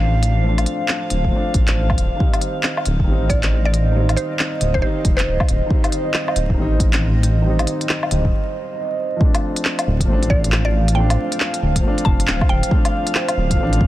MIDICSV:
0, 0, Header, 1, 7, 480
1, 0, Start_track
1, 0, Tempo, 437956
1, 493, Time_signature, 4, 2, 24, 8
1, 15202, End_track
2, 0, Start_track
2, 0, Title_t, "Synth texture"
2, 0, Program_c, 0, 99
2, 0, Note_on_c, 0, 77, 82
2, 9131, Note_off_c, 0, 77, 0
2, 10091, Note_on_c, 0, 77, 84
2, 15202, Note_off_c, 0, 77, 0
2, 15202, End_track
3, 0, Start_track
3, 0, Title_t, "Synth pluck"
3, 0, Program_c, 1, 84
3, 3612, Note_on_c, 1, 74, 85
3, 3868, Note_off_c, 1, 74, 0
3, 4005, Note_on_c, 1, 74, 87
3, 4254, Note_off_c, 1, 74, 0
3, 4564, Note_on_c, 1, 72, 87
3, 4824, Note_off_c, 1, 72, 0
3, 5197, Note_on_c, 1, 72, 88
3, 5258, Note_off_c, 1, 72, 0
3, 5283, Note_on_c, 1, 72, 75
3, 5385, Note_off_c, 1, 72, 0
3, 5664, Note_on_c, 1, 72, 91
3, 6334, Note_off_c, 1, 72, 0
3, 11288, Note_on_c, 1, 74, 87
3, 11546, Note_off_c, 1, 74, 0
3, 11672, Note_on_c, 1, 74, 90
3, 11927, Note_off_c, 1, 74, 0
3, 12001, Note_on_c, 1, 79, 87
3, 12262, Note_off_c, 1, 79, 0
3, 13205, Note_on_c, 1, 81, 95
3, 13465, Note_off_c, 1, 81, 0
3, 13693, Note_on_c, 1, 79, 96
3, 14173, Note_off_c, 1, 79, 0
3, 15202, End_track
4, 0, Start_track
4, 0, Title_t, "Analog synth pad"
4, 0, Program_c, 2, 89
4, 0, Note_on_c, 2, 72, 70
4, 0, Note_on_c, 2, 77, 83
4, 2372, Note_off_c, 2, 72, 0
4, 2375, Note_off_c, 2, 77, 0
4, 2421, Note_on_c, 2, 75, 86
4, 2425, Note_on_c, 2, 72, 68
4, 10054, Note_off_c, 2, 75, 0
4, 10055, Note_off_c, 2, 72, 0
4, 10100, Note_on_c, 2, 72, 71
4, 10100, Note_on_c, 2, 77, 88
4, 15202, Note_off_c, 2, 72, 0
4, 15202, Note_off_c, 2, 77, 0
4, 15202, End_track
5, 0, Start_track
5, 0, Title_t, "Upright piano"
5, 0, Program_c, 3, 0
5, 0, Control_c, 3, 64, 127
5, 0, Note_on_c, 3, 53, 87
5, 0, Note_on_c, 3, 57, 82
5, 0, Note_on_c, 3, 60, 84
5, 0, Note_on_c, 3, 62, 98
5, 430, Note_off_c, 3, 53, 0
5, 446, Note_on_c, 3, 53, 80
5, 458, Note_off_c, 3, 57, 0
5, 475, Note_on_c, 3, 57, 73
5, 481, Note_off_c, 3, 60, 0
5, 496, Note_off_c, 3, 62, 0
5, 505, Note_on_c, 3, 60, 73
5, 535, Note_on_c, 3, 62, 83
5, 1387, Note_off_c, 3, 53, 0
5, 1403, Note_on_c, 3, 53, 90
5, 1417, Note_off_c, 3, 57, 0
5, 1434, Note_on_c, 3, 57, 82
5, 1438, Note_off_c, 3, 60, 0
5, 1453, Note_off_c, 3, 62, 0
5, 1462, Note_on_c, 3, 60, 76
5, 1490, Note_on_c, 3, 62, 93
5, 2367, Note_off_c, 3, 53, 0
5, 2368, Note_on_c, 3, 51, 78
5, 2382, Note_off_c, 3, 57, 0
5, 2396, Note_on_c, 3, 55, 72
5, 2397, Note_off_c, 3, 60, 0
5, 2411, Note_off_c, 3, 62, 0
5, 2426, Note_on_c, 3, 60, 68
5, 2429, Control_c, 3, 64, 0
5, 2455, Note_on_c, 3, 63, 82
5, 2616, Control_c, 3, 64, 127
5, 3315, Note_off_c, 3, 51, 0
5, 3332, Note_on_c, 3, 51, 88
5, 3344, Note_off_c, 3, 55, 0
5, 3358, Note_off_c, 3, 60, 0
5, 3363, Note_on_c, 3, 55, 82
5, 3373, Note_off_c, 3, 63, 0
5, 3393, Note_on_c, 3, 60, 78
5, 3419, Note_on_c, 3, 63, 95
5, 4276, Note_off_c, 3, 51, 0
5, 4293, Note_on_c, 3, 51, 78
5, 4305, Note_off_c, 3, 55, 0
5, 4321, Note_on_c, 3, 55, 76
5, 4322, Note_off_c, 3, 60, 0
5, 4335, Note_off_c, 3, 63, 0
5, 4350, Note_on_c, 3, 60, 73
5, 4378, Note_on_c, 3, 63, 86
5, 5229, Note_off_c, 3, 51, 0
5, 5246, Note_on_c, 3, 51, 89
5, 5260, Note_off_c, 3, 55, 0
5, 5276, Note_on_c, 3, 55, 80
5, 5281, Note_off_c, 3, 60, 0
5, 5295, Note_off_c, 3, 63, 0
5, 5306, Note_on_c, 3, 60, 83
5, 5334, Note_on_c, 3, 63, 98
5, 6191, Note_off_c, 3, 51, 0
5, 6207, Note_on_c, 3, 51, 78
5, 6219, Note_off_c, 3, 55, 0
5, 6235, Note_on_c, 3, 55, 72
5, 6239, Note_off_c, 3, 60, 0
5, 6252, Note_off_c, 3, 63, 0
5, 6263, Note_on_c, 3, 60, 72
5, 6296, Note_on_c, 3, 63, 86
5, 7153, Note_off_c, 3, 51, 0
5, 7169, Note_on_c, 3, 51, 92
5, 7178, Note_off_c, 3, 55, 0
5, 7195, Note_on_c, 3, 55, 82
5, 7197, Note_off_c, 3, 60, 0
5, 7213, Note_off_c, 3, 63, 0
5, 7225, Note_on_c, 3, 60, 84
5, 7252, Note_on_c, 3, 63, 100
5, 8112, Note_off_c, 3, 51, 0
5, 8129, Note_on_c, 3, 51, 84
5, 8141, Note_off_c, 3, 55, 0
5, 8157, Note_on_c, 3, 55, 77
5, 8158, Note_off_c, 3, 60, 0
5, 8171, Note_off_c, 3, 63, 0
5, 8187, Note_on_c, 3, 60, 75
5, 8217, Note_on_c, 3, 63, 87
5, 9090, Note_off_c, 3, 51, 0
5, 9104, Note_off_c, 3, 55, 0
5, 9119, Note_off_c, 3, 60, 0
5, 9134, Note_off_c, 3, 63, 0
5, 10045, Note_on_c, 3, 53, 79
5, 10078, Note_on_c, 3, 57, 74
5, 10105, Note_on_c, 3, 60, 73
5, 10109, Control_c, 3, 64, 0
5, 10134, Note_on_c, 3, 62, 89
5, 10315, Control_c, 3, 64, 127
5, 10998, Note_off_c, 3, 53, 0
5, 11014, Note_on_c, 3, 53, 91
5, 11024, Note_off_c, 3, 57, 0
5, 11038, Note_off_c, 3, 60, 0
5, 11041, Note_on_c, 3, 57, 85
5, 11053, Note_off_c, 3, 62, 0
5, 11070, Note_on_c, 3, 60, 85
5, 11098, Note_on_c, 3, 62, 99
5, 11953, Note_off_c, 3, 53, 0
5, 11970, Note_on_c, 3, 53, 85
5, 11979, Note_off_c, 3, 57, 0
5, 11996, Note_on_c, 3, 57, 75
5, 12000, Note_off_c, 3, 60, 0
5, 12015, Note_off_c, 3, 62, 0
5, 12024, Note_on_c, 3, 60, 77
5, 12056, Note_on_c, 3, 62, 94
5, 12912, Note_off_c, 3, 53, 0
5, 12928, Note_on_c, 3, 53, 90
5, 12943, Note_off_c, 3, 57, 0
5, 12958, Note_off_c, 3, 60, 0
5, 12959, Note_on_c, 3, 57, 81
5, 12974, Note_off_c, 3, 62, 0
5, 12985, Note_on_c, 3, 60, 84
5, 13017, Note_on_c, 3, 62, 99
5, 13874, Note_off_c, 3, 53, 0
5, 13891, Note_on_c, 3, 53, 81
5, 13905, Note_off_c, 3, 57, 0
5, 13918, Note_off_c, 3, 60, 0
5, 13921, Note_on_c, 3, 57, 75
5, 13934, Note_off_c, 3, 62, 0
5, 13950, Note_on_c, 3, 60, 73
5, 13977, Note_on_c, 3, 62, 91
5, 14830, Note_off_c, 3, 53, 0
5, 14846, Note_on_c, 3, 53, 97
5, 14862, Note_off_c, 3, 57, 0
5, 14879, Note_on_c, 3, 57, 81
5, 14881, Note_off_c, 3, 60, 0
5, 14894, Note_off_c, 3, 62, 0
5, 14910, Note_on_c, 3, 60, 86
5, 14936, Note_on_c, 3, 62, 102
5, 15202, Note_off_c, 3, 53, 0
5, 15202, Note_off_c, 3, 57, 0
5, 15202, Note_off_c, 3, 60, 0
5, 15202, Note_off_c, 3, 62, 0
5, 15202, End_track
6, 0, Start_track
6, 0, Title_t, "Detuned saw bass"
6, 0, Program_c, 4, 39
6, 0, Note_on_c, 4, 33, 84
6, 722, Note_off_c, 4, 33, 0
6, 1214, Note_on_c, 4, 26, 101
6, 1440, Note_off_c, 4, 26, 0
6, 1691, Note_on_c, 4, 33, 76
6, 1831, Note_off_c, 4, 33, 0
6, 1847, Note_on_c, 4, 33, 88
6, 2163, Note_off_c, 4, 33, 0
6, 2179, Note_on_c, 4, 26, 88
6, 2315, Note_off_c, 4, 26, 0
6, 3138, Note_on_c, 4, 26, 100
6, 3361, Note_off_c, 4, 26, 0
6, 3377, Note_on_c, 4, 33, 96
6, 3601, Note_off_c, 4, 33, 0
6, 3616, Note_on_c, 4, 33, 80
6, 4563, Note_off_c, 4, 33, 0
6, 5054, Note_on_c, 4, 26, 96
6, 5280, Note_off_c, 4, 26, 0
6, 5535, Note_on_c, 4, 29, 93
6, 5760, Note_off_c, 4, 29, 0
6, 5774, Note_on_c, 4, 26, 86
6, 5913, Note_off_c, 4, 26, 0
6, 6015, Note_on_c, 4, 26, 101
6, 6153, Note_off_c, 4, 26, 0
6, 6969, Note_on_c, 4, 26, 97
6, 7197, Note_off_c, 4, 26, 0
6, 7206, Note_on_c, 4, 33, 99
6, 7436, Note_off_c, 4, 33, 0
6, 7452, Note_on_c, 4, 33, 83
6, 8402, Note_off_c, 4, 33, 0
6, 8892, Note_on_c, 4, 26, 100
6, 9118, Note_off_c, 4, 26, 0
6, 10820, Note_on_c, 4, 26, 103
6, 11043, Note_off_c, 4, 26, 0
6, 11058, Note_on_c, 4, 33, 99
6, 11282, Note_off_c, 4, 33, 0
6, 11293, Note_on_c, 4, 33, 88
6, 12242, Note_off_c, 4, 33, 0
6, 12739, Note_on_c, 4, 26, 101
6, 12962, Note_off_c, 4, 26, 0
6, 13220, Note_on_c, 4, 29, 98
6, 13443, Note_off_c, 4, 29, 0
6, 13464, Note_on_c, 4, 26, 87
6, 13598, Note_off_c, 4, 26, 0
6, 13696, Note_on_c, 4, 26, 107
6, 13834, Note_off_c, 4, 26, 0
6, 14654, Note_on_c, 4, 26, 102
6, 14880, Note_off_c, 4, 26, 0
6, 14892, Note_on_c, 4, 33, 101
6, 15119, Note_off_c, 4, 33, 0
6, 15132, Note_on_c, 4, 33, 82
6, 15202, Note_off_c, 4, 33, 0
6, 15202, End_track
7, 0, Start_track
7, 0, Title_t, "Drums"
7, 249, Note_on_c, 9, 42, 57
7, 359, Note_off_c, 9, 42, 0
7, 636, Note_on_c, 9, 42, 30
7, 636, Note_on_c, 9, 77, 46
7, 726, Note_off_c, 9, 42, 0
7, 726, Note_on_c, 9, 42, 53
7, 746, Note_off_c, 9, 77, 0
7, 835, Note_off_c, 9, 42, 0
7, 966, Note_on_c, 9, 39, 98
7, 1075, Note_off_c, 9, 39, 0
7, 1208, Note_on_c, 9, 42, 51
7, 1318, Note_off_c, 9, 42, 0
7, 1364, Note_on_c, 9, 36, 60
7, 1474, Note_off_c, 9, 36, 0
7, 1690, Note_on_c, 9, 42, 52
7, 1693, Note_on_c, 9, 36, 99
7, 1800, Note_off_c, 9, 42, 0
7, 1802, Note_off_c, 9, 36, 0
7, 1837, Note_on_c, 9, 39, 103
7, 1837, Note_on_c, 9, 42, 30
7, 1946, Note_off_c, 9, 39, 0
7, 1946, Note_off_c, 9, 42, 0
7, 2080, Note_on_c, 9, 77, 55
7, 2084, Note_on_c, 9, 36, 102
7, 2169, Note_on_c, 9, 42, 52
7, 2190, Note_off_c, 9, 77, 0
7, 2194, Note_off_c, 9, 36, 0
7, 2279, Note_off_c, 9, 42, 0
7, 2414, Note_on_c, 9, 36, 114
7, 2524, Note_off_c, 9, 36, 0
7, 2559, Note_on_c, 9, 42, 28
7, 2559, Note_on_c, 9, 77, 45
7, 2645, Note_off_c, 9, 42, 0
7, 2645, Note_on_c, 9, 42, 51
7, 2669, Note_off_c, 9, 77, 0
7, 2755, Note_off_c, 9, 42, 0
7, 2882, Note_on_c, 9, 39, 97
7, 2991, Note_off_c, 9, 39, 0
7, 3039, Note_on_c, 9, 77, 58
7, 3128, Note_on_c, 9, 42, 50
7, 3149, Note_off_c, 9, 77, 0
7, 3237, Note_off_c, 9, 42, 0
7, 3286, Note_on_c, 9, 36, 58
7, 3395, Note_off_c, 9, 36, 0
7, 3615, Note_on_c, 9, 36, 96
7, 3616, Note_on_c, 9, 42, 53
7, 3725, Note_off_c, 9, 36, 0
7, 3726, Note_off_c, 9, 42, 0
7, 3761, Note_on_c, 9, 39, 96
7, 3761, Note_on_c, 9, 42, 27
7, 3870, Note_off_c, 9, 39, 0
7, 3870, Note_off_c, 9, 42, 0
7, 4096, Note_on_c, 9, 42, 51
7, 4206, Note_off_c, 9, 42, 0
7, 4484, Note_on_c, 9, 42, 28
7, 4484, Note_on_c, 9, 77, 51
7, 4572, Note_off_c, 9, 42, 0
7, 4572, Note_on_c, 9, 42, 51
7, 4594, Note_off_c, 9, 77, 0
7, 4682, Note_off_c, 9, 42, 0
7, 4812, Note_on_c, 9, 39, 102
7, 4921, Note_off_c, 9, 39, 0
7, 5050, Note_on_c, 9, 42, 47
7, 5160, Note_off_c, 9, 42, 0
7, 5205, Note_on_c, 9, 36, 55
7, 5315, Note_off_c, 9, 36, 0
7, 5533, Note_on_c, 9, 42, 50
7, 5534, Note_on_c, 9, 36, 101
7, 5642, Note_off_c, 9, 42, 0
7, 5644, Note_off_c, 9, 36, 0
7, 5688, Note_on_c, 9, 39, 93
7, 5688, Note_on_c, 9, 42, 29
7, 5797, Note_off_c, 9, 39, 0
7, 5797, Note_off_c, 9, 42, 0
7, 5921, Note_on_c, 9, 77, 60
7, 5924, Note_on_c, 9, 36, 103
7, 6013, Note_on_c, 9, 42, 49
7, 6030, Note_off_c, 9, 77, 0
7, 6034, Note_off_c, 9, 36, 0
7, 6122, Note_off_c, 9, 42, 0
7, 6253, Note_on_c, 9, 36, 106
7, 6362, Note_off_c, 9, 36, 0
7, 6401, Note_on_c, 9, 42, 30
7, 6401, Note_on_c, 9, 77, 53
7, 6491, Note_off_c, 9, 42, 0
7, 6491, Note_on_c, 9, 42, 52
7, 6510, Note_off_c, 9, 77, 0
7, 6601, Note_off_c, 9, 42, 0
7, 6725, Note_on_c, 9, 39, 98
7, 6835, Note_off_c, 9, 39, 0
7, 6884, Note_on_c, 9, 77, 60
7, 6970, Note_on_c, 9, 42, 51
7, 6993, Note_off_c, 9, 77, 0
7, 7079, Note_off_c, 9, 42, 0
7, 7123, Note_on_c, 9, 36, 54
7, 7233, Note_off_c, 9, 36, 0
7, 7451, Note_on_c, 9, 36, 93
7, 7453, Note_on_c, 9, 42, 53
7, 7561, Note_off_c, 9, 36, 0
7, 7563, Note_off_c, 9, 42, 0
7, 7596, Note_on_c, 9, 39, 98
7, 7596, Note_on_c, 9, 42, 29
7, 7706, Note_off_c, 9, 39, 0
7, 7706, Note_off_c, 9, 42, 0
7, 7929, Note_on_c, 9, 42, 53
7, 8038, Note_off_c, 9, 42, 0
7, 8322, Note_on_c, 9, 42, 31
7, 8322, Note_on_c, 9, 77, 53
7, 8408, Note_off_c, 9, 42, 0
7, 8408, Note_on_c, 9, 42, 53
7, 8431, Note_off_c, 9, 77, 0
7, 8517, Note_off_c, 9, 42, 0
7, 8560, Note_on_c, 9, 42, 30
7, 8649, Note_on_c, 9, 39, 96
7, 8669, Note_off_c, 9, 42, 0
7, 8758, Note_off_c, 9, 39, 0
7, 8799, Note_on_c, 9, 77, 62
7, 8889, Note_on_c, 9, 42, 54
7, 8909, Note_off_c, 9, 77, 0
7, 8998, Note_off_c, 9, 42, 0
7, 9041, Note_on_c, 9, 36, 56
7, 9150, Note_off_c, 9, 36, 0
7, 10091, Note_on_c, 9, 36, 117
7, 10201, Note_off_c, 9, 36, 0
7, 10243, Note_on_c, 9, 42, 45
7, 10243, Note_on_c, 9, 77, 54
7, 10353, Note_off_c, 9, 42, 0
7, 10353, Note_off_c, 9, 77, 0
7, 10481, Note_on_c, 9, 42, 58
7, 10573, Note_on_c, 9, 39, 108
7, 10591, Note_off_c, 9, 42, 0
7, 10683, Note_off_c, 9, 39, 0
7, 10726, Note_on_c, 9, 42, 46
7, 10726, Note_on_c, 9, 77, 64
7, 10836, Note_off_c, 9, 42, 0
7, 10836, Note_off_c, 9, 77, 0
7, 10963, Note_on_c, 9, 36, 56
7, 10967, Note_on_c, 9, 42, 55
7, 11073, Note_off_c, 9, 36, 0
7, 11076, Note_off_c, 9, 42, 0
7, 11207, Note_on_c, 9, 42, 33
7, 11293, Note_on_c, 9, 36, 104
7, 11317, Note_off_c, 9, 42, 0
7, 11403, Note_off_c, 9, 36, 0
7, 11446, Note_on_c, 9, 42, 58
7, 11532, Note_on_c, 9, 39, 99
7, 11556, Note_off_c, 9, 42, 0
7, 11641, Note_off_c, 9, 39, 0
7, 11927, Note_on_c, 9, 42, 57
7, 12036, Note_off_c, 9, 42, 0
7, 12168, Note_on_c, 9, 42, 45
7, 12168, Note_on_c, 9, 77, 52
7, 12278, Note_off_c, 9, 42, 0
7, 12278, Note_off_c, 9, 77, 0
7, 12406, Note_on_c, 9, 42, 58
7, 12495, Note_on_c, 9, 39, 109
7, 12516, Note_off_c, 9, 42, 0
7, 12605, Note_off_c, 9, 39, 0
7, 12646, Note_on_c, 9, 42, 48
7, 12755, Note_off_c, 9, 42, 0
7, 12887, Note_on_c, 9, 36, 61
7, 12887, Note_on_c, 9, 42, 57
7, 12996, Note_off_c, 9, 42, 0
7, 12997, Note_off_c, 9, 36, 0
7, 13129, Note_on_c, 9, 42, 34
7, 13216, Note_on_c, 9, 36, 102
7, 13239, Note_off_c, 9, 42, 0
7, 13326, Note_off_c, 9, 36, 0
7, 13369, Note_on_c, 9, 42, 58
7, 13453, Note_on_c, 9, 39, 110
7, 13479, Note_off_c, 9, 42, 0
7, 13562, Note_off_c, 9, 39, 0
7, 13606, Note_on_c, 9, 36, 110
7, 13607, Note_on_c, 9, 77, 58
7, 13715, Note_off_c, 9, 36, 0
7, 13716, Note_off_c, 9, 77, 0
7, 13845, Note_on_c, 9, 42, 58
7, 13934, Note_on_c, 9, 36, 116
7, 13954, Note_off_c, 9, 42, 0
7, 14044, Note_off_c, 9, 36, 0
7, 14084, Note_on_c, 9, 42, 47
7, 14084, Note_on_c, 9, 77, 51
7, 14194, Note_off_c, 9, 42, 0
7, 14194, Note_off_c, 9, 77, 0
7, 14321, Note_on_c, 9, 42, 54
7, 14409, Note_on_c, 9, 39, 105
7, 14430, Note_off_c, 9, 42, 0
7, 14519, Note_off_c, 9, 39, 0
7, 14560, Note_on_c, 9, 42, 47
7, 14560, Note_on_c, 9, 77, 60
7, 14669, Note_off_c, 9, 42, 0
7, 14669, Note_off_c, 9, 77, 0
7, 14803, Note_on_c, 9, 42, 55
7, 14805, Note_on_c, 9, 36, 64
7, 14913, Note_off_c, 9, 42, 0
7, 14915, Note_off_c, 9, 36, 0
7, 15045, Note_on_c, 9, 42, 32
7, 15132, Note_on_c, 9, 36, 115
7, 15155, Note_off_c, 9, 42, 0
7, 15202, Note_off_c, 9, 36, 0
7, 15202, End_track
0, 0, End_of_file